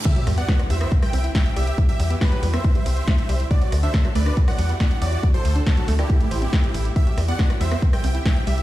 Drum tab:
CC |x---------------|----------------|----------------|----------------|
HH |xxoxxxoxxooxxxox|xxoxxxoxxxoxxxox|xxoxxxoxxooxxxox|xxoxxxoxxxoxxxox|
SD |--r-or-r-r--o---|----o--r----o---|--r-or-r-r--o---|----o-or----o---|
BD |o---o---o---o---|o---o---o---o---|o---o---o---o---|o---o---o---o---|

CC |----------------|
HH |xxoxxxoxxooxxxox|
SD |--r-or-r-r--o---|
BD |o---o---o---o---|